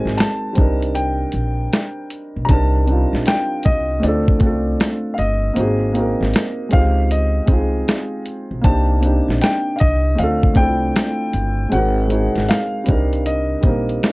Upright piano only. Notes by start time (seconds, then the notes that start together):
Already playing: G#5
0.18 A5
0.95 G5
2.45 A#5
2.50 A5
3.27 G5
3.65 D#5
4.03 D5
5.14 F5
5.19 D#5
6.73 F5
7.11 D#5
8.64 A5
9.41 G5
9.76 F5
9.80 D#5
10.18 F5
10.57 G5
11.72 F#5
12.49 F5
13.26 D#5